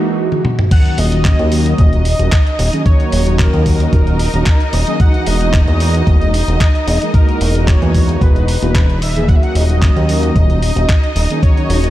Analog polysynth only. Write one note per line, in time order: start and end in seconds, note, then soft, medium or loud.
0.00 0.28 E3 medium
0.00 0.29 G#3 medium
0.00 0.29 A#3 medium
0.00 0.29 D#4 medium
0.00 0.29 F#4 loud
0.31 0.41 E3 medium
0.31 0.41 G#3 medium
0.31 0.42 A#3 medium
0.31 0.42 D#4 medium
0.31 0.42 F#4 loud
0.71 1.09 D#3 medium
0.71 1.09 F#3 medium
0.71 1.09 A#3 medium
0.71 1.09 C#4 medium
0.71 1.09 F#4 loud
1.12 1.48 D#3 medium
1.12 1.48 F#3 medium
1.12 1.49 A#3 medium
1.12 1.49 C#4 medium
1.12 1.49 F#4 loud
1.51 2.02 D#3 loud
1.51 2.02 F#3 medium
1.51 2.02 A#3 medium
1.51 2.02 C#4 medium
1.51 2.02 F#4 loud
2.19 2.29 D#3 medium
2.19 2.29 F#3 medium
2.19 2.29 A#3 medium
2.19 2.29 C#4 medium
2.19 2.29 F#4 loud
2.72 2.82 D#3 loud
2.72 2.82 F#3 medium
2.72 2.82 A#3 medium
2.72 2.82 C#4 medium
2.72 2.83 G#4 loud
2.85 3.23 D#3 medium
2.85 3.23 A#3 medium
3.26 3.63 D#3 medium
3.26 3.63 F#3 medium
3.26 3.63 A#3 medium
3.26 3.63 C#4 medium
3.26 3.63 F#4 loud
3.65 4.16 D#3 loud
3.65 4.16 F#3 medium
3.65 4.16 A#3 medium
3.65 4.17 C#4 medium
3.65 4.17 F#4 loud
4.34 4.43 D#3 medium
4.34 4.43 F#3 medium
4.34 4.43 A#3 medium
4.34 4.44 C#4 medium
4.34 4.44 F#4 loud
4.86 4.96 D#3 loud
4.86 4.97 F#3 medium
4.86 4.97 A#3 medium
4.86 4.97 C#4 medium
4.86 4.97 G#4 loud
4.99 5.37 E3 medium
4.99 5.37 G#3 medium
4.99 5.38 D#4 medium
4.99 5.38 F#4 loud
5.40 5.77 E3 medium
5.40 5.77 G#3 medium
5.40 5.77 A#3 medium
5.40 5.77 D#4 medium
5.40 5.78 F#4 loud
5.79 6.30 E3 loud
5.79 6.31 G#3 medium
5.79 6.31 A#3 medium
5.79 6.31 D#4 medium
5.79 6.31 F#4 loud
6.48 6.57 E3 medium
6.48 6.58 G#3 medium
6.48 6.58 A#3 medium
6.48 6.58 D#4 medium
6.48 6.58 F#4 loud
7.02 7.11 E3 loud
7.02 7.11 G#3 medium
7.02 7.11 A#3 medium
7.02 7.11 D#4 medium
7.02 7.12 G#4 loud
7.14 7.52 E3 medium
7.14 7.52 G#3 medium
7.14 7.52 F#4 medium
7.55 7.92 E3 medium
7.55 7.92 G#3 medium
7.55 7.92 A#3 medium
7.55 7.92 D#4 medium
7.55 7.92 F#4 loud
7.94 8.45 E3 loud
7.94 8.45 G#3 medium
7.94 8.45 A#3 medium
7.94 8.45 D#4 medium
7.94 8.45 F#4 loud
8.61 8.71 E3 medium
8.61 8.71 G#3 medium
8.61 8.72 A#3 medium
8.61 8.72 D#4 medium
8.61 8.72 F#4 loud
9.15 9.25 E3 loud
9.15 9.25 G#3 medium
9.15 9.25 A#3 medium
9.15 9.26 D#4 medium
9.15 9.26 G#4 loud
9.28 9.66 D#3 medium
9.28 9.66 F#3 medium
9.28 9.66 A#3 medium
9.28 9.66 C#4 medium
9.28 9.66 F#4 loud
9.69 10.06 D#3 medium
9.69 10.06 F#3 medium
9.69 10.06 A#3 medium
9.69 10.06 C#4 medium
9.69 10.06 F#4 loud
10.08 10.59 D#3 loud
10.08 10.59 F#3 medium
10.08 10.59 A#3 medium
10.08 10.60 C#4 medium
10.08 10.60 F#4 loud
10.76 10.86 D#3 medium
10.76 10.86 F#3 medium
10.76 10.86 A#3 medium
10.76 10.86 C#4 medium
10.76 10.86 F#4 loud
11.30 11.39 D#3 loud
11.30 11.40 F#3 medium
11.30 11.40 A#3 medium
11.30 11.40 C#4 medium
11.30 11.40 G#4 loud
11.42 11.80 D#3 medium
11.42 11.80 F#3 medium
11.42 11.80 C#4 medium
11.42 11.81 F#4 loud
11.83 11.90 D#3 medium
11.83 11.90 F#3 medium
11.83 11.90 A#3 medium
11.83 11.90 C#4 medium
11.83 11.90 F#4 loud